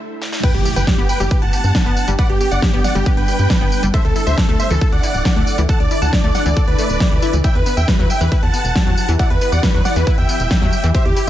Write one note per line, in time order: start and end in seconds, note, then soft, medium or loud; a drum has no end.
0.00 0.40 D2 medium
0.00 0.40 D3 medium
0.00 0.40 A3 medium
0.00 0.40 E4 medium
0.22 snare medium
0.33 snare loud
0.43 3.90 G3 medium
0.43 3.90 B3 medium
0.43 3.90 D4 medium
0.43 0.53 B4 medium
0.43 0.47 B4 loud
0.43 0.53 G5 loud
0.43 0.53 G5 medium
0.43 kick loud
0.43 closed hi-hat loud
0.43 crash loud
0.43 tambourine soft
0.43 impact medium
0.54 0.63 G1 medium
0.54 0.64 G4 medium
0.54 closed hi-hat medium
0.65 0.75 G4 medium
0.65 0.69 G4 medium
0.65 0.75 G4 medium
0.65 open hi-hat loud
0.65 tambourine medium
0.76 0.84 G1 medium
0.76 0.86 B4 medium
0.76 0.86 G5 medium
0.76 closed hi-hat medium
0.76 tambourine soft
0.87 0.96 D4 medium
0.87 0.97 G4 medium
0.87 kick loud
0.87 snare loud
0.87 closed hi-hat medium
0.87 tambourine soft
0.98 1.06 G1 medium
0.98 1.04 B3 loud
0.98 1.08 G4 medium
0.98 closed hi-hat medium
1.09 1.19 B4 medium
1.09 1.19 G5 loud
1.09 open hi-hat medium
1.09 tambourine medium
1.20 1.28 G1 medium
1.20 1.24 G3 loud
1.20 1.30 G4 medium
1.20 closed hi-hat medium
1.20 tambourine soft
1.31 1.41 G4 medium
1.31 1.35 B4 loud
1.31 kick loud
1.31 closed hi-hat loud
1.31 tambourine soft
1.42 1.50 G1 medium
1.42 2.10 F#5 medium
1.42 2.10 A5 loud
1.42 closed hi-hat medium
1.53 1.57 G4 medium
1.53 open hi-hat loud
1.53 tambourine medium
1.64 1.72 G2 medium
1.64 closed hi-hat medium
1.64 tambourine soft
1.75 1.84 D4 medium
1.75 kick loud
1.75 snare loud
1.75 closed hi-hat loud
1.75 tambourine soft
1.86 1.94 G1 medium
1.86 1.92 B3 loud
1.86 closed hi-hat medium
1.97 open hi-hat medium
1.97 tambourine medium
2.08 2.16 G1 medium
2.08 2.11 G3 loud
2.08 closed hi-hat medium
2.08 tambourine soft
2.19 2.22 B4 loud
2.19 2.28 D5 medium
2.19 2.28 F#5 loud
2.19 kick loud
2.19 closed hi-hat loud
2.19 tambourine soft
2.29 2.38 G1 medium
2.29 2.39 G4 medium
2.29 closed hi-hat medium
2.40 2.50 G4 medium
2.40 2.44 G4 medium
2.40 open hi-hat loud
2.40 tambourine medium
2.51 2.60 G1 medium
2.51 2.61 D5 medium
2.51 2.61 F#5 medium
2.51 closed hi-hat medium
2.51 tambourine soft
2.62 2.72 D4 medium
2.62 2.72 G4 medium
2.62 kick loud
2.62 snare loud
2.62 closed hi-hat medium
2.62 tambourine soft
2.73 2.82 G1 medium
2.73 2.79 B3 loud
2.73 2.83 G4 medium
2.73 closed hi-hat medium
2.84 2.94 D5 medium
2.84 2.94 F#5 loud
2.84 snare soft
2.84 open hi-hat medium
2.84 tambourine medium
2.95 3.03 G1 medium
2.95 2.99 G3 loud
2.95 3.05 G4 medium
2.95 closed hi-hat medium
2.95 tambourine soft
3.06 3.16 G4 medium
3.06 3.10 B4 loud
3.06 kick loud
3.06 closed hi-hat medium
3.06 tambourine soft
3.17 3.25 G1 medium
3.17 3.85 B4 medium
3.17 3.85 G5 loud
3.17 closed hi-hat medium
3.28 3.32 G4 medium
3.28 open hi-hat loud
3.28 tambourine medium
3.39 3.47 G2 medium
3.39 closed hi-hat medium
3.39 tambourine soft
3.50 3.59 D4 medium
3.50 kick loud
3.50 snare loud
3.50 closed hi-hat medium
3.50 tambourine soft
3.61 3.69 G1 medium
3.61 3.67 B3 loud
3.61 closed hi-hat medium
3.72 open hi-hat medium
3.72 tambourine medium
3.83 3.91 G1 medium
3.83 3.87 G3 loud
3.83 closed hi-hat medium
3.83 tambourine soft
3.94 7.41 D3 medium
3.94 7.41 D4 medium
3.94 11.30 E4 medium
3.94 3.97 A4 loud
3.94 7.41 A4 loud
3.94 4.04 C5 medium
3.94 4.04 E5 loud
3.94 kick loud
3.94 closed hi-hat loud
3.94 tambourine soft
4.05 4.13 D2 medium
4.05 4.15 A4 medium
4.05 closed hi-hat medium
4.16 4.19 E4 medium
4.16 4.25 A4 medium
4.16 open hi-hat loud
4.16 tambourine medium
4.27 4.35 D2 medium
4.27 4.36 C5 medium
4.27 4.36 E5 medium
4.27 4.36 E5 loud
4.27 closed hi-hat medium
4.27 tambourine soft
4.38 4.47 D4 medium
4.38 4.47 A4 medium
4.38 kick loud
4.38 snare loud
4.38 closed hi-hat medium
4.38 tambourine soft
4.49 4.57 D2 medium
4.49 4.55 A3 loud
4.49 4.58 A4 medium
4.49 closed hi-hat medium
4.59 4.69 C5 medium
4.59 4.69 E5 loud
4.59 open hi-hat loud
4.59 tambourine medium
4.70 4.79 D2 medium
4.70 4.74 E3 loud
4.70 4.80 A4 medium
4.70 closed hi-hat medium
4.70 tambourine soft
4.81 4.91 A4 medium
4.81 4.85 A4 loud
4.81 kick loud
4.81 closed hi-hat medium
4.81 tambourine soft
4.92 5.01 D2 medium
4.92 5.60 D5 medium
4.92 5.60 F#5 loud
4.92 closed hi-hat medium
5.03 5.07 E4 medium
5.03 open hi-hat loud
5.03 tambourine medium
5.14 5.22 D1 medium
5.14 closed hi-hat medium
5.14 tambourine soft
5.25 5.34 D4 medium
5.25 kick loud
5.25 snare loud
5.25 closed hi-hat medium
5.25 tambourine soft
5.36 5.44 D2 medium
5.36 5.42 A3 loud
5.36 closed hi-hat medium
5.47 open hi-hat medium
5.47 tambourine medium
5.58 5.66 D2 medium
5.58 5.62 E3 loud
5.58 closed hi-hat medium
5.58 tambourine soft
5.69 5.73 A4 loud
5.69 5.79 F#5 medium
5.69 5.79 A5 loud
5.69 kick loud
5.69 closed hi-hat medium
5.69 tambourine soft
5.80 5.88 D2 medium
5.80 5.90 D5 medium
5.80 closed hi-hat medium
5.91 5.95 E4 medium
5.91 6.01 D5 medium
5.91 open hi-hat loud
5.91 tambourine medium
6.02 6.10 D2 medium
6.02 6.12 F#5 medium
6.02 6.12 A5 medium
6.02 closed hi-hat medium
6.02 tambourine soft
6.13 6.22 D4 medium
6.13 6.23 D5 medium
6.13 kick loud
6.13 snare loud
6.13 closed hi-hat medium
6.13 tambourine soft
6.24 6.32 D2 medium
6.24 6.30 A3 loud
6.24 6.34 D5 medium
6.24 closed hi-hat medium
6.35 6.45 D5 medium
6.35 6.45 F#5 medium
6.35 6.45 F#5 loud
6.35 snare soft
6.35 open hi-hat loud
6.35 tambourine medium
6.46 6.54 D2 medium
6.46 6.49 E3 loud
6.46 6.55 D5 medium
6.46 closed hi-hat medium
6.46 tambourine soft
6.57 6.60 A4 loud
6.57 6.66 D5 medium
6.57 kick loud
6.57 closed hi-hat medium
6.57 tambourine soft
6.68 6.76 D2 medium
6.68 7.35 B4 medium
6.68 7.35 D5 loud
6.68 closed hi-hat medium
6.79 6.88 A3 loud
6.79 open hi-hat loud
6.79 tambourine medium
6.89 6.98 D1 medium
6.89 closed hi-hat medium
6.89 tambourine soft
7.00 7.10 E3 medium
7.00 kick loud
7.00 snare loud
7.00 closed hi-hat medium
7.00 tambourine soft
7.11 7.20 D2 medium
7.11 7.15 E3 medium
7.11 closed hi-hat medium
7.22 7.31 E4 loud
7.22 open hi-hat medium
7.22 tambourine medium
7.33 7.41 D2 medium
7.33 7.39 E3 medium
7.33 closed hi-hat soft
7.33 tambourine soft
7.44 10.91 E3 medium
7.44 7.48 E4 loud
7.44 11.30 G4 loud
7.44 7.54 E5 medium
7.44 7.54 G5 loud
7.44 kick loud
7.44 closed hi-hat medium
7.44 tambourine soft
7.55 7.63 E2 medium
7.55 7.65 B4 medium
7.55 closed hi-hat medium
7.66 7.70 B3 medium
7.66 7.76 B4 medium
7.66 open hi-hat loud
7.66 tambourine medium
7.77 7.85 E2 medium
7.77 7.87 E5 medium
7.77 7.87 G5 medium
7.77 closed hi-hat medium
7.77 tambourine soft
7.88 7.97 G3 medium
7.88 7.98 B4 medium
7.88 kick loud
7.88 snare loud
7.88 closed hi-hat medium
7.88 tambourine soft
7.99 8.07 E2 medium
7.99 8.05 F#3 loud
7.99 8.09 B4 medium
7.99 closed hi-hat soft
8.10 8.20 E5 medium
8.10 8.20 G5 loud
8.10 open hi-hat loud
8.10 tambourine medium
8.21 8.29 E2 medium
8.21 8.24 E3 loud
8.21 8.31 B4 medium
8.21 closed hi-hat soft
8.21 tambourine soft
8.32 8.35 E4 loud
8.32 8.42 B4 medium
8.32 kick loud
8.32 closed hi-hat medium
8.32 tambourine soft
8.43 8.51 E2 medium
8.43 9.11 F#5 medium
8.43 9.11 A5 loud
8.43 closed hi-hat medium
8.54 8.57 B3 medium
8.54 open hi-hat loud
8.54 tambourine medium
8.65 8.73 E1 medium
8.65 closed hi-hat soft
8.65 tambourine soft
8.76 8.85 G3 medium
8.76 kick loud
8.76 snare loud
8.76 closed hi-hat medium
8.76 tambourine soft
8.86 8.95 E2 medium
8.86 8.93 F#3 loud
8.86 closed hi-hat medium
8.97 open hi-hat medium
8.97 tambourine medium
9.08 9.17 E2 medium
9.08 9.12 E3 loud
9.08 closed hi-hat soft
9.08 tambourine soft
9.19 9.23 E4 loud
9.19 9.29 D5 medium
9.19 9.29 F#5 loud
9.19 kick loud
9.19 closed hi-hat loud
9.19 tambourine soft
9.30 9.39 E2 medium
9.30 9.40 B4 medium
9.30 closed hi-hat medium
9.41 9.45 B3 medium
9.41 9.51 B4 medium
9.41 open hi-hat loud
9.41 tambourine medium
9.52 9.60 E2 medium
9.52 9.62 D5 medium
9.52 9.62 F#5 medium
9.52 closed hi-hat medium
9.52 tambourine soft
9.63 9.72 G3 medium
9.63 9.73 B4 medium
9.63 kick loud
9.63 snare loud
9.63 closed hi-hat medium
9.63 tambourine soft
9.74 9.82 E2 medium
9.74 9.80 F#3 loud
9.74 9.84 B4 medium
9.74 closed hi-hat medium
9.85 9.95 D5 medium
9.85 9.95 F#5 loud
9.85 snare soft
9.85 open hi-hat medium
9.85 tambourine medium
9.96 10.04 E2 medium
9.96 10.00 E3 loud
9.96 10.06 B4 medium
9.96 closed hi-hat medium
9.96 tambourine soft
10.07 10.11 E4 loud
10.07 10.17 B4 medium
10.07 kick loud
10.07 closed hi-hat medium
10.07 tambourine soft
10.18 10.26 E2 medium
10.18 10.86 E5 medium
10.18 10.86 G5 loud
10.18 closed hi-hat medium
10.29 10.33 B3 medium
10.29 open hi-hat loud
10.29 tambourine medium
10.40 10.48 E1 medium
10.40 closed hi-hat medium
10.40 tambourine soft
10.51 10.60 G3 medium
10.51 kick loud
10.51 snare loud
10.51 closed hi-hat medium
10.51 tambourine soft
10.62 10.70 E2 medium
10.62 10.68 F#3 loud
10.62 closed hi-hat medium
10.73 open hi-hat medium
10.73 tambourine medium
10.84 10.92 E2 medium
10.84 10.87 E3 loud
10.84 closed hi-hat medium
10.84 tambourine soft
10.95 11.30 C4 medium
10.95 10.98 G4 loud
10.95 11.04 C5 medium
10.95 11.04 E5 loud
10.95 kick loud
10.95 closed hi-hat loud
10.95 tambourine soft
11.05 11.14 E2 medium
11.05 11.15 G4 medium
11.05 closed hi-hat medium
11.16 11.20 E4 medium
11.16 11.26 G4 medium
11.16 open hi-hat loud
11.16 tambourine medium